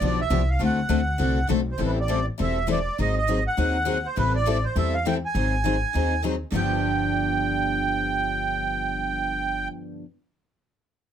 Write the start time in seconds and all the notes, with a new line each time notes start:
0.01 B1 D3 F3 B3 D4 G4
0.05 D5
0.21 E5
0.30 C2 D3 F3 B3 D4 G4
0.50 F5
0.59 D2 D3 A3 C4 F#4 A4
0.65 F#5
0.89 D2 D3 A3 C4 F#4 A4
1.18 C2 D3 A3 C4 F#4 A4
1.49 B1 D3 A3 C4 F#4 A4
1.72 C5
1.78 A1 E3 G3 C4 E4 A4
1.85 B4
2.00 D5
2.08 E3 G3 C4 E4 A4
2.38 E1 E3 G3 C4 E4 A4
2.42 E5
2.67 E3 G3 C4 E4 A4
2.72 D5
2.98 G#1 D#3 F#3 C4 D#4 G#4 D#5
3.18 D#5
3.28 D#3 F#3 C4 D#4 G#4
3.47 F#5
3.57 D#2 D#3 F#3 C4 D#4 G#4
3.85 D#3 F#3 C4 D#4 G#4
4.06 C5
4.16 A1 E3 G3 C4 E4 A4 B4
4.35 D5
4.46 E3 G3 C4 E4 A4
4.64 C5
4.75 E2 E3 G3 C4 E4 A4 E5
4.94 F5
5.06 E3 G3 C4 E4 A4 G5
5.26 G#5
5.35 G#1 D#3 F#3 C4 D#4 G#4
5.64 D#3 F#3 C4 D#4 G#4
5.94 D#2 D#3 F#3 C4 D#4 G#4
6.23 D#3 F#3 C4 D#4 G#4
6.52 G1 G2 D3 F3 B3 D4 G4
6.56 G5